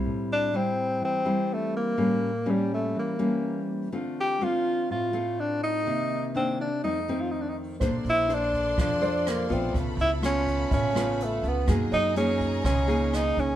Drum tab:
HH |--------|--------|--------|--------|
SD |--------|--------|--------|--------|
BD |--------|--------|--------|--------|

HH |xxxxxxxx|xxxxxxxx|xxxxxxxx|
SD |r---r-r-|--r--r--|r---r-r-|
BD |o--oo--o|o--oo--o|o--oo--o|